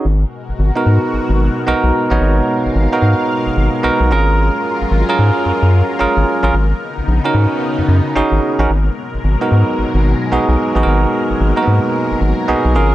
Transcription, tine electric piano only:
X:1
M:4/4
L:1/16
Q:"Swing 16ths" 1/4=111
K:G#dor
V:1 name="Tine electric piano"
z4 z [B,DFA]4- [B,DFA] z2 [B,DFA]2 z [B,DFc]- | [B,DFc]3 z2 [B,DFA]4- [B,DFA] z2 [B,DFA]2 [CEGA]2- | [CEGA]4 z [CEGA]4- [CEGA] z2 [CEGA]2 z [CEGA] | z4 z [CDFA]4- [CDFA] z2 [CDFG]2 z [CDFA] |
z4 z [B,DFA]4- [B,DFA] z2 [B,DFG]2 z [B,DFGA]- | [B,DFGA]3 z2 [A,B,DFA]4- [A,B,DFA] z2 [B,DFG]2 [CEGA]2 |]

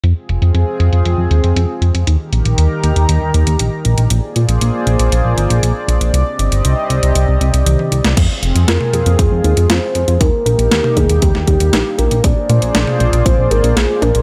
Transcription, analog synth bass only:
X:1
M:4/4
L:1/16
Q:1/4=118
K:Fdor
V:1 name="Analog synth bass" clef=bass
F,, z F,,, F,, F,, z F,, F,, F,, F,, E,, F,, F,, z F,, F,, | E,, z B,,, B,,, E,, z E,, E,, E,, E,, E,, E,, B,,, z B,,, B,,, | B,,, z B,, B,,, B,,, z B,,, B,,, B,,, B,,, A,,, B,,, B,,, z B,,, B,,, | C,, z G,,, G,,, C,, z C,, C,, C,, C,, C,, C,, C,, z C,, C,, |
F,, z F,,, F,, F,, z F,, F,, F,, F,, E,, F,, F,, z F,, F,, | E,, z B,,, B,,, E,, z E,, E,, E,, E,, E,, E,, B,,, z B,,, B,,, | B,,, z B,, B,,, B,,, z B,,, B,,, B,,, B,,, A,,, B,,, B,,, z B,,, B,,, |]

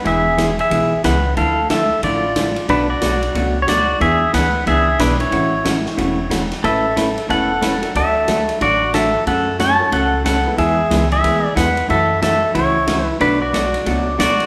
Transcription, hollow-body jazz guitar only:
X:1
M:4/4
L:1/8
Q:"Swing" 1/4=182
K:A
V:1 name="Hollow-body jazz guitar"
[E,G,B,EG] z [E,G,B,EG] z [E,G,B,EG] z [E,G,B,EG] z | [D,=F,A,E] z [D,F,A,E] z [D,F,A,E] z [D,F,A,E] z | [B,,F,A,DF] z [B,,F,A,DF] z [B,,F,A,DF] z [B,,F,A,DF] z | [E,B,DG] z [E,B,DG] z [E,B,DG] z [E,B,DG] z |
[C,E,A,CF] z [C,E,A,CF] z [C,E,A,CF] z [C,E,A,CF] z | [A,CEB] z [A,CEB] z [A,CEB] z [A,CEB] z | [D,F,A,DF] z [D,F,A,DF] z [D,F,A,DF] z [D,F,A,DF] z | [C,F,A,CF] z [C,F,A,CF] z [C,F,A,CF] z [C,F,A,CF] z |
[E,G,B,EG] z [E,G,B,EG] z [E,G,B,EG] z [E,G,B,EG] z | [C,E,A,CF] z [C,E,A,CF] z [C,E,A,CF] z [C,E,A,CF] z | [B,,F,A,DF] z [B,,F,A,DF] z [B,,F,A,DF] z [B,,F,A,DF] z |]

